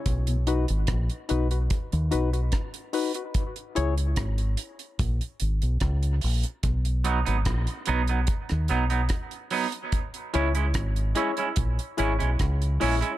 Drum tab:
HH |xxxxxxxxxxxxxxox|xxxxxxxxxxxxxxox|xxxxxxxxxxxxxxox|xxxxxxxxxxxxxxox|
SD |----r-------r---|----r-------r---|----r----r--r---|----r-------r---|
BD |o---o---o---o---|o---o---o---o---|o---o---o---o---|o---o---o---o---|